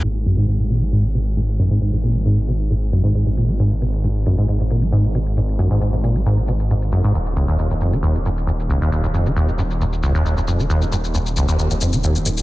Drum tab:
SH |------x-x-xxx-xx|xxxxxxxxxxxxxxxx|xxxxxxxxxxxxxxxx|xxxxxxxxxxxxxxxx|

SH |xxxxxxxxxxxxxxxx|xxxxxxxxxxxxxxxx|xxxxxxxxxxxxxxxx|